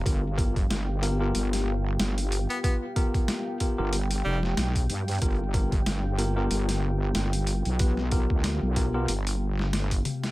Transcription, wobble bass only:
X:1
M:4/4
L:1/16
Q:"Swing 16ths" 1/4=93
K:Cmix
V:1 name="Wobble bass" clef=bass
G,,,4 G,,,4 G,,,4 G,,,3 z | z6 z G,,,3 F,,,2 =B,,,2 G,,2 | G,,,4 G,,,4 G,,,4 G,,,3 =B,,,- | =B,,,3 D,,2 B,,,3 G,,,6 z2 |]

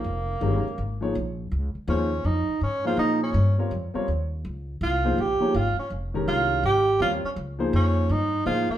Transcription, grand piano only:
X:1
M:4/4
L:1/8
Q:"Swing" 1/4=164
K:Bbdor
V:1 name="Grand piano"
z2 [E,A,DGB] z2 [F,B,EAd] z2 | z2 [F,B,EAc] z4 [F,B,EAc]- | [F,B,EAc]2 z [G,CFBd] z [G,CFBd] z2 | z3 [F,B,EAc] z [F,B,EAd] z2 |
z [E,A,DGB]3 z2 [G,CFBd] z | z [F,B,EAc]3 z2 [F,B,EAc] z |]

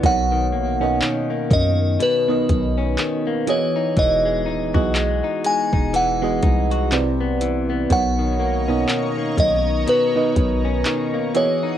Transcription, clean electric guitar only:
X:1
M:4/4
L:1/16
Q:"Swing 16ths" 1/4=61
K:B
V:1 name="Clean electric guitar" clef=bass
B,, D, A, C D, A, D,2 B,, D,2 C D, A, E, D | E, G, D F G, D G, D E, G, D F =C, B, E, B, | B,, D, A, C D, A, D,2 B,, D,2 C D, A, E, D |]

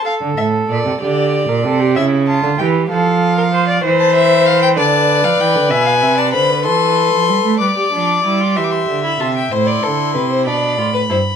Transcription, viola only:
X:1
M:6/8
L:1/16
Q:3/8=63
K:Dm
V:1 name="Viola"
A6 G3 B A G | E2 F2 G2 A3 B c d | c6 =B6- | =B6 A6 |
=B G D2 E F G3 E F2 | E6 D2 F2 E2 |]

